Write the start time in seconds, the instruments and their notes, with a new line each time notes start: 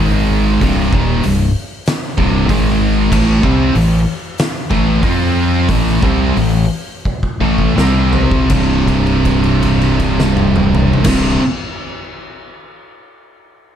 0.00 fingered electric bass G#1, distorted electric guitar G#2 D#3 G#3
0.61 fingered electric bass C1, distorted electric guitar C2 G2 C3, kick, open hi-hat
0.93 fingered electric bass D#1, distorted electric guitar D#2 A#2 D#3, kick
1.23 fingered electric bass C1, distorted electric guitar C2 G2, open hi-hat
1.86 snare, open hi-hat
2.18 fingered electric bass C1, distorted electric guitar C2 G2 C3, kick
2.49 fingered electric bass G#1, distorted electric guitar G#2 D#3 G#3, kick, open hi-hat
3.12 fingered electric bass A1, distorted electric guitar A2 E3 A3, kick, crash
3.42 fingered electric bass C2, distorted electric guitar C3 G3 C4, kick
3.75 fingered electric bass A1, distorted electric guitar A2 E3, open hi-hat
4.38 snare, open hi-hat
4.71 fingered electric bass A1, distorted electric guitar A2 E3 A3, kick
5.03 fingered electric bass F2, distorted electric guitar F3 C4 F4, kick, open hi-hat
5.68 fingered electric bass A1, distorted electric guitar A2 E3 A3, kick, open hi-hat
5.87 snare
6.02 fingered electric bass C2, distorted electric guitar C3 G3 C4, kick
6.36 fingered electric bass A1, distorted electric guitar A2 E3, open hi-hat
7.05 kick
7.23 kick
7.40 fingered electric bass A1, distorted electric guitar A2 E3 A3
7.58 kick
7.77 fingered electric bass C2, distorted electric guitar C3 G3 C4, snare
8.13 floor tom
8.31 kick
8.50 fingered electric bass C1, distorted electric guitar C2 G2, kick, crash
8.54 distorted electric guitar C3
8.88 kick, crash
9.07 crash
9.25 kick, crash
9.44 crash
9.63 kick, crash
9.81 crash
10.00 kick, crash
10.20 snare
10.37 high tom
10.56 mid tom
10.75 mid tom
10.93 floor tom
11.04 fingered electric bass C1, distorted electric guitar C2 G2, kick, snare, crash
11.09 distorted electric guitar C3